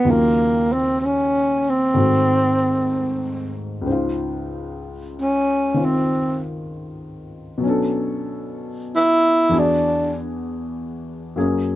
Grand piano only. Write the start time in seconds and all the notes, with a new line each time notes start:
0.04 D#2 C#3 D#3 F#3
0.09 F4
1.94 G#2 D#3 A3 C4 F#4
3.81 C#2 C#3
3.87 D#4 C5
3.92 F4
5.74 D#3 C4 F4
7.58 B2 F#3
7.63 C#4 D4
7.69 A4
9.49 E2 E3 D4 F#4 G#4
11.36 F#2 F#3 A#3 C#4 G#4